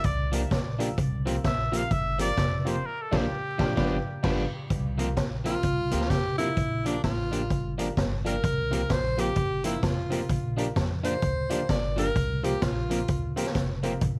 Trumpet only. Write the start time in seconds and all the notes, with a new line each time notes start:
0.05 D5
1.46 E5
1.77 F5
1.92 E5
2.21 D5
2.59 D5
2.68 C5
2.86 A#4
3.02 A4
3.17 G4